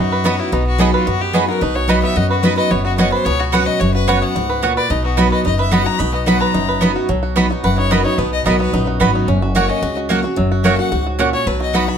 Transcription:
Already playing: F#2 B3 D#4 F#4 B4
0.00 F#4
0.12 B4
0.24 F#3 B3 D#4 F#4 D#5 B5
0.39 E4 F#4
0.52 B1 B2 B3 D#4
0.67 F#4
0.78 F#3 B3 D#4 F#4 G#4 D#5 B5
0.94 F4 B4
1.07 F#2 B3 F#4
1.21 F#4 G4
1.33 F#3 B3 D#4 F#4 G#4 B4 D#5 B5
1.49 F#4 A#4
1.61 B1 B2 D#4 B4
1.75 F#4 C#5
1.88 F#3 B3 D#4 F#4 B4 D#5 B5
2.03 B3 E5
2.16 F#2 F#4 D#5
2.30 F#4 B4
2.43 F#3 B3 D#4 F#4 B4 D#5 B5
2.57 B4 D#5
2.71 F#1 F#2 B3 C#5
2.85 F#4
2.98 F#3 B3 C#4 F#4 C#5 D#5 F#5
3.12 B4 C5
3.25 C#2 B2 B3 C#5
3.40 F#4
3.52 F#3 B3 C#4 F#4 B4 C#5 F#5
3.66 F#4 D#5
3.80 F#1 F#2 F#4 C#5
3.94 F#4 B4
4.07 F#3 B3 C#4 F#4 B4 C#5 F#5
4.22 B3 F#5
4.35 C#2 G#2 F#4
4.49 B4
4.62 A#2 B3 F#4 C#5 F#5
4.77 B4 D5
4.90 B1 B2 D#4 D#5
5.04 B3 F#4
5.17 F#3 B3 D#4 F#4 B4 D#5 B5
5.31 B4 D#5
5.45 F#1 F#2 D#4 D#5
5.59 B4 E5
5.71 F#3 B3 D#4 F#4 D#5 F#5 B5
5.86 F#4 A#5
5.99 B1 B2 D#4 B5
6.14 B3 D#5
6.26 F#3 B3 D#4 F#4 D#5 F#5 B5
6.41 B4 A#5
6.54 F#1 F#2 D#4
6.69 B4
6.81 F#3 B3 D#4 F#4 D#5 B5
6.96 F#4
7.09 B1 B2 F#3
7.23 F#4
7.36 F#3 B3 D#4 F#4 D#5 B5
7.50 D#4 F#4
7.64 F#1 F#2 B4 F#5
7.78 D#4 C#5
7.91 F#3 B3 D#4 F#4 A#4 D#5 B5
8.05 D#4 C#5
8.18 B1 B2 B3 B4
8.33 D#5
8.46 B1 F#3 B3 D#4 F#4 A#4 D#5 B5
8.60 B3 B4
8.73 A#1 F#2 D#4
8.87 F#4
9.00 G#1 F#3 B3 D#4 F#4 B4 D#5 B5
9.15 D#4
9.28 F#1 F#2 C#4
9.42 F#4
9.55 F#3 A#3 C#4 F#4 C#5 F#5
9.69 C#4 D#5
9.82 C#2 C#3 F#4
9.97 F#4
10.09 F#3 A#3 C#4 F#4 C#5 F#5
10.23 C#4 F#4
10.36 F#1 F#2 F#3
10.52 F#4
10.63 F#3 A#3 C#4 F#4 C#5 E5 F#5
10.78 F#4 F#5
10.92 C#2 G#2 F#4
11.07 F#4
11.19 A#2 A#3 C#4 F#4 C#5 F#5
11.33 F#4 C#5
11.46 B1 B2 F#3 B4
11.60 F#4 D#5
11.73 F#3 B3 D#4 F#4 D#5 F#5 B5
11.88 F#4 B5

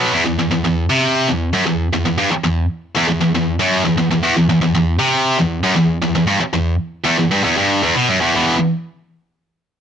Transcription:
Already playing: B2 F#3 B3
0.14 E2
0.26 E2
0.39 E2
0.51 E2
0.65 E2
0.90 C3
1.28 E2
1.53 F#2
1.66 E2
1.93 E2
2.06 E2
2.18 G2
2.31 muted distorted electric guitar stroke
2.44 E2
2.96 E2
3.08 E2
3.21 E2
3.35 E2
3.59 F#2
3.85 E2
3.98 E2
4.11 E2
4.23 E2
4.37 E2
4.49 E2
4.62 E2
4.75 E2
4.99 C3
5.39 E2
5.64 F#2
5.76 E2
6.02 E2
6.15 E2
6.27 G2
6.40 muted distorted electric guitar stroke
6.53 E2
7.05 E2
7.19 E2
7.31 G2
7.44 E2
7.58 G2
7.83 E2
7.95 B2
8.09 F#2
8.21 E2
8.35 E2 B2 E3

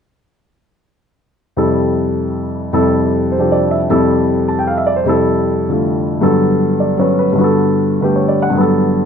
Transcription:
1.57 F2 C3 G3 E4 A4
2.73 F2 C3 G3 E4 A4
3.32 C5
3.38 C3 F3 D4 G4
3.52 D5
3.71 E5
3.90 F2 C3 G3 E4 A4
4.48 A5
4.59 G5
4.67 F5
4.78 E5
4.86 D5
4.96 C5
5.04 F2 C3 G3 E4
5.09 A4
5.69 D3 A3 F4 A4
6.21 G2 D3 F#3 B3 A4
6.80 D5
6.98 F#3 C#4 B4 C#5
7.19 B4
7.33 G2 D3
7.38 B3 F#4
7.44 A4
8.01 D3 A3 G4 B4
8.16 C#5
8.28 D5
8.42 F#5
8.50 G2 D3
8.55 F#3 B3
8.61 A4

